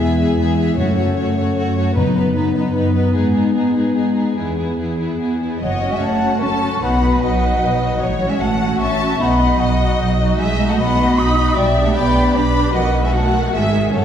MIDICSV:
0, 0, Header, 1, 9, 480
1, 0, Start_track
1, 0, Tempo, 396301
1, 944, Time_signature, 3, 2, 24, 8
1, 4306, Tempo, 411805
1, 6706, Tempo, 399202
1, 8626, Tempo, 396563
1, 16903, End_track
2, 0, Start_track
2, 0, Title_t, "Flute"
2, 0, Program_c, 0, 73
2, 6729, Note_on_c, 0, 78, 62
2, 7082, Note_on_c, 0, 80, 57
2, 7100, Note_off_c, 0, 78, 0
2, 7175, Note_off_c, 0, 80, 0
2, 7182, Note_on_c, 0, 81, 69
2, 7654, Note_off_c, 0, 81, 0
2, 7663, Note_on_c, 0, 85, 68
2, 8159, Note_on_c, 0, 83, 67
2, 8177, Note_off_c, 0, 85, 0
2, 8620, Note_on_c, 0, 78, 67
2, 8638, Note_off_c, 0, 83, 0
2, 9567, Note_off_c, 0, 78, 0
2, 9574, Note_on_c, 0, 78, 63
2, 9940, Note_on_c, 0, 80, 62
2, 9958, Note_off_c, 0, 78, 0
2, 10068, Note_on_c, 0, 81, 71
2, 10086, Note_off_c, 0, 80, 0
2, 10541, Note_off_c, 0, 81, 0
2, 10549, Note_on_c, 0, 85, 78
2, 11022, Note_off_c, 0, 85, 0
2, 11027, Note_on_c, 0, 83, 74
2, 11513, Note_on_c, 0, 78, 80
2, 11531, Note_off_c, 0, 83, 0
2, 12163, Note_off_c, 0, 78, 0
2, 12466, Note_on_c, 0, 80, 79
2, 12842, Note_on_c, 0, 81, 64
2, 12860, Note_off_c, 0, 80, 0
2, 12945, Note_off_c, 0, 81, 0
2, 12953, Note_on_c, 0, 83, 86
2, 13436, Note_on_c, 0, 87, 92
2, 13454, Note_off_c, 0, 83, 0
2, 13892, Note_off_c, 0, 87, 0
2, 13899, Note_on_c, 0, 79, 71
2, 14247, Note_on_c, 0, 81, 67
2, 14265, Note_off_c, 0, 79, 0
2, 14347, Note_off_c, 0, 81, 0
2, 14354, Note_on_c, 0, 83, 84
2, 14832, Note_off_c, 0, 83, 0
2, 14838, Note_on_c, 0, 86, 83
2, 15308, Note_off_c, 0, 86, 0
2, 15315, Note_on_c, 0, 78, 72
2, 15677, Note_off_c, 0, 78, 0
2, 15693, Note_on_c, 0, 80, 67
2, 15810, Note_off_c, 0, 80, 0
2, 15820, Note_on_c, 0, 81, 74
2, 16291, Note_off_c, 0, 81, 0
2, 16302, Note_on_c, 0, 80, 78
2, 16778, Note_off_c, 0, 80, 0
2, 16804, Note_on_c, 0, 78, 63
2, 16903, Note_off_c, 0, 78, 0
2, 16903, End_track
3, 0, Start_track
3, 0, Title_t, "Violin section"
3, 0, Program_c, 1, 48
3, 4, Note_on_c, 1, 76, 49
3, 224, Note_off_c, 1, 76, 0
3, 238, Note_on_c, 1, 76, 44
3, 467, Note_off_c, 1, 76, 0
3, 479, Note_on_c, 1, 76, 44
3, 675, Note_off_c, 1, 76, 0
3, 690, Note_on_c, 1, 76, 49
3, 931, Note_off_c, 1, 76, 0
3, 939, Note_on_c, 1, 73, 51
3, 1149, Note_off_c, 1, 73, 0
3, 1164, Note_on_c, 1, 73, 50
3, 1385, Note_off_c, 1, 73, 0
3, 1400, Note_on_c, 1, 73, 51
3, 1627, Note_off_c, 1, 73, 0
3, 1641, Note_on_c, 1, 73, 45
3, 1878, Note_off_c, 1, 73, 0
3, 1893, Note_on_c, 1, 73, 49
3, 2116, Note_off_c, 1, 73, 0
3, 2130, Note_on_c, 1, 73, 46
3, 2362, Note_on_c, 1, 71, 53
3, 2370, Note_off_c, 1, 73, 0
3, 2595, Note_off_c, 1, 71, 0
3, 2609, Note_on_c, 1, 71, 43
3, 2837, Note_off_c, 1, 71, 0
3, 2851, Note_on_c, 1, 71, 47
3, 3074, Note_off_c, 1, 71, 0
3, 3088, Note_on_c, 1, 71, 43
3, 3307, Note_off_c, 1, 71, 0
3, 3322, Note_on_c, 1, 71, 48
3, 3554, Note_off_c, 1, 71, 0
3, 3568, Note_on_c, 1, 71, 48
3, 3810, Note_off_c, 1, 71, 0
3, 3817, Note_on_c, 1, 68, 48
3, 4030, Note_off_c, 1, 68, 0
3, 4044, Note_on_c, 1, 68, 41
3, 4287, Note_off_c, 1, 68, 0
3, 4301, Note_on_c, 1, 68, 42
3, 4528, Note_off_c, 1, 68, 0
3, 4542, Note_on_c, 1, 68, 37
3, 4756, Note_off_c, 1, 68, 0
3, 4770, Note_on_c, 1, 68, 36
3, 5002, Note_off_c, 1, 68, 0
3, 5016, Note_on_c, 1, 68, 33
3, 5228, Note_off_c, 1, 68, 0
3, 5242, Note_on_c, 1, 68, 37
3, 5485, Note_off_c, 1, 68, 0
3, 5499, Note_on_c, 1, 68, 30
3, 5734, Note_off_c, 1, 68, 0
3, 5748, Note_on_c, 1, 68, 34
3, 5969, Note_off_c, 1, 68, 0
3, 5983, Note_on_c, 1, 68, 29
3, 6197, Note_off_c, 1, 68, 0
3, 6211, Note_on_c, 1, 68, 32
3, 6440, Note_off_c, 1, 68, 0
3, 6454, Note_on_c, 1, 68, 36
3, 6691, Note_on_c, 1, 75, 57
3, 6694, Note_off_c, 1, 68, 0
3, 7145, Note_off_c, 1, 75, 0
3, 7173, Note_on_c, 1, 73, 46
3, 7657, Note_on_c, 1, 69, 48
3, 7660, Note_off_c, 1, 73, 0
3, 8141, Note_off_c, 1, 69, 0
3, 8155, Note_on_c, 1, 71, 58
3, 9593, Note_off_c, 1, 71, 0
3, 9597, Note_on_c, 1, 73, 53
3, 10063, Note_off_c, 1, 73, 0
3, 10069, Note_on_c, 1, 78, 61
3, 10540, Note_on_c, 1, 76, 62
3, 10550, Note_off_c, 1, 78, 0
3, 11017, Note_off_c, 1, 76, 0
3, 11044, Note_on_c, 1, 75, 65
3, 12470, Note_off_c, 1, 75, 0
3, 12484, Note_on_c, 1, 75, 69
3, 13875, Note_off_c, 1, 75, 0
3, 13914, Note_on_c, 1, 76, 70
3, 14372, Note_off_c, 1, 76, 0
3, 14390, Note_on_c, 1, 74, 69
3, 14849, Note_on_c, 1, 71, 69
3, 14859, Note_off_c, 1, 74, 0
3, 15811, Note_off_c, 1, 71, 0
3, 15822, Note_on_c, 1, 66, 62
3, 16789, Note_off_c, 1, 66, 0
3, 16789, Note_on_c, 1, 69, 52
3, 16903, Note_off_c, 1, 69, 0
3, 16903, End_track
4, 0, Start_track
4, 0, Title_t, "Violin section"
4, 0, Program_c, 2, 48
4, 0, Note_on_c, 2, 68, 53
4, 227, Note_off_c, 2, 68, 0
4, 259, Note_on_c, 2, 68, 47
4, 459, Note_off_c, 2, 68, 0
4, 474, Note_on_c, 2, 68, 50
4, 704, Note_off_c, 2, 68, 0
4, 724, Note_on_c, 2, 68, 46
4, 948, Note_off_c, 2, 68, 0
4, 966, Note_on_c, 2, 66, 55
4, 1189, Note_off_c, 2, 66, 0
4, 1203, Note_on_c, 2, 66, 43
4, 1424, Note_off_c, 2, 66, 0
4, 1438, Note_on_c, 2, 66, 47
4, 1665, Note_off_c, 2, 66, 0
4, 1686, Note_on_c, 2, 66, 49
4, 1895, Note_off_c, 2, 66, 0
4, 1910, Note_on_c, 2, 66, 55
4, 2140, Note_off_c, 2, 66, 0
4, 2154, Note_on_c, 2, 66, 50
4, 2382, Note_off_c, 2, 66, 0
4, 2383, Note_on_c, 2, 63, 60
4, 2616, Note_off_c, 2, 63, 0
4, 2634, Note_on_c, 2, 63, 45
4, 2830, Note_off_c, 2, 63, 0
4, 2844, Note_on_c, 2, 63, 49
4, 3086, Note_off_c, 2, 63, 0
4, 3105, Note_on_c, 2, 63, 47
4, 3337, Note_off_c, 2, 63, 0
4, 3356, Note_on_c, 2, 63, 47
4, 3565, Note_off_c, 2, 63, 0
4, 3579, Note_on_c, 2, 63, 41
4, 3809, Note_off_c, 2, 63, 0
4, 3824, Note_on_c, 2, 63, 48
4, 4017, Note_off_c, 2, 63, 0
4, 4032, Note_on_c, 2, 63, 43
4, 4285, Note_off_c, 2, 63, 0
4, 4312, Note_on_c, 2, 63, 42
4, 4523, Note_off_c, 2, 63, 0
4, 4537, Note_on_c, 2, 63, 38
4, 4756, Note_off_c, 2, 63, 0
4, 4770, Note_on_c, 2, 63, 38
4, 4980, Note_off_c, 2, 63, 0
4, 4994, Note_on_c, 2, 63, 36
4, 5243, Note_off_c, 2, 63, 0
4, 5259, Note_on_c, 2, 64, 39
4, 5489, Note_off_c, 2, 64, 0
4, 5503, Note_on_c, 2, 64, 30
4, 5732, Note_off_c, 2, 64, 0
4, 5746, Note_on_c, 2, 64, 33
4, 5967, Note_off_c, 2, 64, 0
4, 5981, Note_on_c, 2, 64, 34
4, 6220, Note_off_c, 2, 64, 0
4, 6235, Note_on_c, 2, 64, 34
4, 6464, Note_off_c, 2, 64, 0
4, 6478, Note_on_c, 2, 64, 34
4, 6705, Note_off_c, 2, 64, 0
4, 6729, Note_on_c, 2, 73, 53
4, 7054, Note_off_c, 2, 73, 0
4, 7083, Note_on_c, 2, 76, 49
4, 7192, Note_on_c, 2, 78, 56
4, 7193, Note_off_c, 2, 76, 0
4, 7669, Note_off_c, 2, 78, 0
4, 7673, Note_on_c, 2, 81, 62
4, 8140, Note_off_c, 2, 81, 0
4, 8159, Note_on_c, 2, 78, 63
4, 8622, Note_off_c, 2, 78, 0
4, 8650, Note_on_c, 2, 75, 57
4, 9581, Note_off_c, 2, 75, 0
4, 9600, Note_on_c, 2, 73, 58
4, 9952, Note_on_c, 2, 76, 48
4, 9954, Note_off_c, 2, 73, 0
4, 10070, Note_off_c, 2, 76, 0
4, 10078, Note_on_c, 2, 78, 59
4, 10554, Note_off_c, 2, 78, 0
4, 10560, Note_on_c, 2, 81, 67
4, 11027, Note_off_c, 2, 81, 0
4, 11041, Note_on_c, 2, 78, 64
4, 11505, Note_off_c, 2, 78, 0
4, 11505, Note_on_c, 2, 75, 65
4, 12463, Note_off_c, 2, 75, 0
4, 12477, Note_on_c, 2, 76, 74
4, 12822, Note_off_c, 2, 76, 0
4, 12845, Note_on_c, 2, 78, 43
4, 12936, Note_off_c, 2, 78, 0
4, 12950, Note_on_c, 2, 78, 72
4, 13414, Note_off_c, 2, 78, 0
4, 13417, Note_on_c, 2, 83, 75
4, 13878, Note_on_c, 2, 74, 70
4, 13884, Note_off_c, 2, 83, 0
4, 14244, Note_off_c, 2, 74, 0
4, 14244, Note_on_c, 2, 78, 52
4, 14340, Note_on_c, 2, 79, 68
4, 14367, Note_off_c, 2, 78, 0
4, 14825, Note_off_c, 2, 79, 0
4, 14845, Note_on_c, 2, 83, 76
4, 15311, Note_on_c, 2, 75, 66
4, 15318, Note_off_c, 2, 83, 0
4, 15675, Note_off_c, 2, 75, 0
4, 15682, Note_on_c, 2, 76, 56
4, 15779, Note_on_c, 2, 78, 68
4, 15805, Note_off_c, 2, 76, 0
4, 16279, Note_off_c, 2, 78, 0
4, 16279, Note_on_c, 2, 76, 68
4, 16761, Note_on_c, 2, 73, 57
4, 16766, Note_off_c, 2, 76, 0
4, 16903, Note_off_c, 2, 73, 0
4, 16903, End_track
5, 0, Start_track
5, 0, Title_t, "Viola section"
5, 0, Program_c, 3, 48
5, 14, Note_on_c, 3, 59, 42
5, 235, Note_off_c, 3, 59, 0
5, 248, Note_on_c, 3, 59, 40
5, 472, Note_off_c, 3, 59, 0
5, 494, Note_on_c, 3, 59, 46
5, 714, Note_off_c, 3, 59, 0
5, 730, Note_on_c, 3, 59, 44
5, 951, Note_off_c, 3, 59, 0
5, 971, Note_on_c, 3, 57, 50
5, 1191, Note_off_c, 3, 57, 0
5, 1216, Note_on_c, 3, 57, 52
5, 1434, Note_off_c, 3, 57, 0
5, 1448, Note_on_c, 3, 57, 44
5, 1662, Note_off_c, 3, 57, 0
5, 1677, Note_on_c, 3, 57, 45
5, 1904, Note_off_c, 3, 57, 0
5, 1916, Note_on_c, 3, 57, 47
5, 2134, Note_off_c, 3, 57, 0
5, 2148, Note_on_c, 3, 57, 49
5, 2378, Note_on_c, 3, 59, 48
5, 2380, Note_off_c, 3, 57, 0
5, 2614, Note_off_c, 3, 59, 0
5, 2629, Note_on_c, 3, 59, 45
5, 2853, Note_off_c, 3, 59, 0
5, 2867, Note_on_c, 3, 59, 45
5, 3077, Note_off_c, 3, 59, 0
5, 3092, Note_on_c, 3, 59, 46
5, 3320, Note_off_c, 3, 59, 0
5, 3335, Note_on_c, 3, 59, 47
5, 3562, Note_off_c, 3, 59, 0
5, 3576, Note_on_c, 3, 59, 45
5, 3809, Note_off_c, 3, 59, 0
5, 3824, Note_on_c, 3, 59, 46
5, 4057, Note_off_c, 3, 59, 0
5, 4071, Note_on_c, 3, 59, 42
5, 4303, Note_off_c, 3, 59, 0
5, 4317, Note_on_c, 3, 59, 43
5, 4533, Note_off_c, 3, 59, 0
5, 4547, Note_on_c, 3, 59, 35
5, 4773, Note_off_c, 3, 59, 0
5, 4787, Note_on_c, 3, 59, 34
5, 5000, Note_off_c, 3, 59, 0
5, 5014, Note_on_c, 3, 59, 37
5, 5253, Note_off_c, 3, 59, 0
5, 5268, Note_on_c, 3, 59, 34
5, 5497, Note_off_c, 3, 59, 0
5, 5511, Note_on_c, 3, 59, 34
5, 5740, Note_off_c, 3, 59, 0
5, 5754, Note_on_c, 3, 59, 31
5, 5973, Note_off_c, 3, 59, 0
5, 5987, Note_on_c, 3, 59, 30
5, 6219, Note_off_c, 3, 59, 0
5, 6233, Note_on_c, 3, 59, 33
5, 6461, Note_off_c, 3, 59, 0
5, 6475, Note_on_c, 3, 59, 32
5, 6704, Note_off_c, 3, 59, 0
5, 6941, Note_on_c, 3, 66, 41
5, 6944, Note_on_c, 3, 61, 41
5, 7414, Note_off_c, 3, 66, 0
5, 7416, Note_off_c, 3, 61, 0
5, 7431, Note_on_c, 3, 61, 36
5, 7436, Note_on_c, 3, 66, 39
5, 7891, Note_off_c, 3, 61, 0
5, 7895, Note_off_c, 3, 66, 0
5, 7905, Note_on_c, 3, 61, 42
5, 7910, Note_on_c, 3, 66, 43
5, 8136, Note_off_c, 3, 66, 0
5, 8140, Note_off_c, 3, 61, 0
5, 8149, Note_on_c, 3, 63, 39
5, 8150, Note_on_c, 3, 66, 38
5, 8377, Note_off_c, 3, 66, 0
5, 8382, Note_off_c, 3, 63, 0
5, 8391, Note_on_c, 3, 66, 38
5, 8396, Note_on_c, 3, 63, 41
5, 8860, Note_off_c, 3, 66, 0
5, 8862, Note_off_c, 3, 63, 0
5, 8884, Note_on_c, 3, 63, 42
5, 8886, Note_on_c, 3, 66, 38
5, 9344, Note_off_c, 3, 66, 0
5, 9347, Note_off_c, 3, 63, 0
5, 9358, Note_on_c, 3, 66, 42
5, 9361, Note_on_c, 3, 63, 39
5, 9588, Note_off_c, 3, 66, 0
5, 9590, Note_off_c, 3, 63, 0
5, 9846, Note_on_c, 3, 66, 43
5, 9854, Note_on_c, 3, 61, 44
5, 10297, Note_off_c, 3, 66, 0
5, 10304, Note_off_c, 3, 61, 0
5, 10311, Note_on_c, 3, 66, 43
5, 10318, Note_on_c, 3, 61, 42
5, 10783, Note_off_c, 3, 66, 0
5, 10786, Note_off_c, 3, 61, 0
5, 10812, Note_on_c, 3, 66, 48
5, 10813, Note_on_c, 3, 61, 48
5, 11038, Note_off_c, 3, 61, 0
5, 11038, Note_off_c, 3, 66, 0
5, 11050, Note_on_c, 3, 66, 38
5, 11051, Note_on_c, 3, 63, 41
5, 11271, Note_off_c, 3, 63, 0
5, 11271, Note_off_c, 3, 66, 0
5, 11286, Note_on_c, 3, 63, 46
5, 11286, Note_on_c, 3, 66, 48
5, 11747, Note_off_c, 3, 63, 0
5, 11747, Note_off_c, 3, 66, 0
5, 11763, Note_on_c, 3, 66, 46
5, 11766, Note_on_c, 3, 63, 44
5, 12225, Note_off_c, 3, 66, 0
5, 12226, Note_off_c, 3, 63, 0
5, 12245, Note_on_c, 3, 66, 50
5, 12246, Note_on_c, 3, 63, 48
5, 12704, Note_off_c, 3, 66, 0
5, 12705, Note_off_c, 3, 63, 0
5, 12718, Note_on_c, 3, 63, 48
5, 12718, Note_on_c, 3, 66, 51
5, 13173, Note_off_c, 3, 66, 0
5, 13178, Note_off_c, 3, 63, 0
5, 13187, Note_on_c, 3, 66, 49
5, 13191, Note_on_c, 3, 63, 44
5, 13644, Note_off_c, 3, 66, 0
5, 13649, Note_off_c, 3, 63, 0
5, 13659, Note_on_c, 3, 66, 50
5, 13664, Note_on_c, 3, 63, 46
5, 13890, Note_off_c, 3, 66, 0
5, 13893, Note_off_c, 3, 63, 0
5, 14123, Note_on_c, 3, 62, 51
5, 14127, Note_on_c, 3, 67, 50
5, 14591, Note_off_c, 3, 62, 0
5, 14593, Note_off_c, 3, 67, 0
5, 14605, Note_on_c, 3, 62, 49
5, 14607, Note_on_c, 3, 67, 53
5, 15074, Note_off_c, 3, 67, 0
5, 15075, Note_off_c, 3, 62, 0
5, 15089, Note_on_c, 3, 62, 50
5, 15089, Note_on_c, 3, 67, 55
5, 15325, Note_off_c, 3, 62, 0
5, 15325, Note_off_c, 3, 67, 0
5, 15328, Note_on_c, 3, 66, 49
5, 15336, Note_on_c, 3, 51, 57
5, 16247, Note_off_c, 3, 66, 0
5, 16301, Note_on_c, 3, 68, 49
5, 16739, Note_off_c, 3, 51, 0
5, 16787, Note_off_c, 3, 68, 0
5, 16791, Note_on_c, 3, 69, 46
5, 16795, Note_on_c, 3, 61, 48
5, 16903, Note_off_c, 3, 61, 0
5, 16903, Note_off_c, 3, 69, 0
5, 16903, End_track
6, 0, Start_track
6, 0, Title_t, "French horn section"
6, 0, Program_c, 4, 60
6, 0, Note_on_c, 4, 56, 45
6, 0, Note_on_c, 4, 64, 48
6, 915, Note_off_c, 4, 56, 0
6, 945, Note_on_c, 4, 61, 51
6, 949, Note_off_c, 4, 64, 0
6, 949, Note_on_c, 4, 57, 48
6, 2353, Note_off_c, 4, 61, 0
6, 2354, Note_off_c, 4, 57, 0
6, 2381, Note_on_c, 4, 63, 47
6, 2387, Note_on_c, 4, 59, 51
6, 5214, Note_off_c, 4, 63, 0
6, 5217, Note_off_c, 4, 59, 0
6, 5247, Note_on_c, 4, 68, 37
6, 5254, Note_on_c, 4, 59, 37
6, 6441, Note_off_c, 4, 59, 0
6, 6462, Note_off_c, 4, 68, 0
6, 16903, End_track
7, 0, Start_track
7, 0, Title_t, "Cello section"
7, 0, Program_c, 5, 48
7, 0, Note_on_c, 5, 40, 59
7, 404, Note_off_c, 5, 40, 0
7, 460, Note_on_c, 5, 40, 48
7, 884, Note_off_c, 5, 40, 0
7, 925, Note_on_c, 5, 42, 64
7, 1355, Note_off_c, 5, 42, 0
7, 1404, Note_on_c, 5, 42, 62
7, 1835, Note_off_c, 5, 42, 0
7, 1887, Note_on_c, 5, 42, 54
7, 2317, Note_off_c, 5, 42, 0
7, 2373, Note_on_c, 5, 42, 54
7, 2799, Note_off_c, 5, 42, 0
7, 2854, Note_on_c, 5, 42, 60
7, 3279, Note_off_c, 5, 42, 0
7, 3334, Note_on_c, 5, 42, 50
7, 3762, Note_off_c, 5, 42, 0
7, 3819, Note_on_c, 5, 44, 49
7, 4248, Note_off_c, 5, 44, 0
7, 4307, Note_on_c, 5, 44, 49
7, 4723, Note_off_c, 5, 44, 0
7, 4774, Note_on_c, 5, 44, 41
7, 5201, Note_off_c, 5, 44, 0
7, 5262, Note_on_c, 5, 40, 41
7, 5689, Note_off_c, 5, 40, 0
7, 5751, Note_on_c, 5, 40, 38
7, 6174, Note_off_c, 5, 40, 0
7, 6220, Note_on_c, 5, 40, 35
7, 6646, Note_off_c, 5, 40, 0
7, 6701, Note_on_c, 5, 54, 50
7, 6797, Note_off_c, 5, 54, 0
7, 7059, Note_on_c, 5, 56, 47
7, 7176, Note_on_c, 5, 57, 58
7, 7180, Note_off_c, 5, 56, 0
7, 7651, Note_off_c, 5, 57, 0
7, 7662, Note_on_c, 5, 61, 52
7, 8143, Note_off_c, 5, 61, 0
7, 8145, Note_on_c, 5, 59, 51
7, 8615, Note_off_c, 5, 59, 0
7, 8623, Note_on_c, 5, 54, 57
7, 9563, Note_off_c, 5, 54, 0
7, 9578, Note_on_c, 5, 54, 51
7, 9932, Note_on_c, 5, 56, 53
7, 9935, Note_off_c, 5, 54, 0
7, 10060, Note_off_c, 5, 56, 0
7, 10068, Note_on_c, 5, 57, 62
7, 10540, Note_off_c, 5, 57, 0
7, 10555, Note_on_c, 5, 61, 58
7, 11023, Note_on_c, 5, 59, 58
7, 11034, Note_off_c, 5, 61, 0
7, 11496, Note_off_c, 5, 59, 0
7, 11508, Note_on_c, 5, 54, 60
7, 12446, Note_off_c, 5, 54, 0
7, 12463, Note_on_c, 5, 56, 64
7, 12815, Note_off_c, 5, 56, 0
7, 12820, Note_on_c, 5, 57, 48
7, 12928, Note_on_c, 5, 59, 67
7, 12940, Note_off_c, 5, 57, 0
7, 13412, Note_off_c, 5, 59, 0
7, 13413, Note_on_c, 5, 63, 67
7, 13888, Note_on_c, 5, 55, 60
7, 13891, Note_off_c, 5, 63, 0
7, 13985, Note_off_c, 5, 55, 0
7, 14241, Note_on_c, 5, 57, 58
7, 14291, Note_off_c, 5, 57, 0
7, 14359, Note_on_c, 5, 59, 76
7, 14825, Note_on_c, 5, 62, 65
7, 14834, Note_off_c, 5, 59, 0
7, 15317, Note_on_c, 5, 54, 55
7, 15318, Note_off_c, 5, 62, 0
7, 15678, Note_on_c, 5, 56, 56
7, 15685, Note_off_c, 5, 54, 0
7, 15798, Note_on_c, 5, 57, 64
7, 15803, Note_off_c, 5, 56, 0
7, 16279, Note_off_c, 5, 57, 0
7, 16279, Note_on_c, 5, 56, 53
7, 16766, Note_off_c, 5, 56, 0
7, 16783, Note_on_c, 5, 54, 47
7, 16903, Note_off_c, 5, 54, 0
7, 16903, End_track
8, 0, Start_track
8, 0, Title_t, "Timpani"
8, 0, Program_c, 6, 47
8, 935, Note_on_c, 6, 42, 56
8, 1609, Note_off_c, 6, 42, 0
8, 2383, Note_on_c, 6, 42, 55
8, 3051, Note_off_c, 6, 42, 0
8, 16903, End_track
9, 0, Start_track
9, 0, Title_t, "Double bass section"
9, 0, Program_c, 7, 48
9, 6701, Note_on_c, 7, 30, 58
9, 7128, Note_off_c, 7, 30, 0
9, 7188, Note_on_c, 7, 30, 50
9, 7610, Note_off_c, 7, 30, 0
9, 7662, Note_on_c, 7, 30, 49
9, 8087, Note_off_c, 7, 30, 0
9, 8138, Note_on_c, 7, 35, 61
9, 8565, Note_off_c, 7, 35, 0
9, 8614, Note_on_c, 7, 35, 57
9, 9045, Note_off_c, 7, 35, 0
9, 9103, Note_on_c, 7, 35, 47
9, 9529, Note_off_c, 7, 35, 0
9, 9584, Note_on_c, 7, 33, 59
9, 10009, Note_off_c, 7, 33, 0
9, 10060, Note_on_c, 7, 33, 60
9, 10488, Note_off_c, 7, 33, 0
9, 10547, Note_on_c, 7, 33, 49
9, 10974, Note_off_c, 7, 33, 0
9, 11030, Note_on_c, 7, 35, 64
9, 11453, Note_off_c, 7, 35, 0
9, 11508, Note_on_c, 7, 35, 63
9, 11931, Note_off_c, 7, 35, 0
9, 11987, Note_on_c, 7, 35, 55
9, 12409, Note_off_c, 7, 35, 0
9, 12459, Note_on_c, 7, 35, 69
9, 12883, Note_off_c, 7, 35, 0
9, 12946, Note_on_c, 7, 35, 61
9, 13364, Note_off_c, 7, 35, 0
9, 13411, Note_on_c, 7, 35, 58
9, 13834, Note_off_c, 7, 35, 0
9, 13889, Note_on_c, 7, 35, 69
9, 14312, Note_off_c, 7, 35, 0
9, 14365, Note_on_c, 7, 35, 69
9, 14790, Note_off_c, 7, 35, 0
9, 14843, Note_on_c, 7, 35, 57
9, 15270, Note_off_c, 7, 35, 0
9, 15322, Note_on_c, 7, 35, 62
9, 16244, Note_off_c, 7, 35, 0
9, 16285, Note_on_c, 7, 32, 53
9, 16769, Note_off_c, 7, 32, 0
9, 16785, Note_on_c, 7, 30, 56
9, 16903, Note_off_c, 7, 30, 0
9, 16903, End_track
0, 0, End_of_file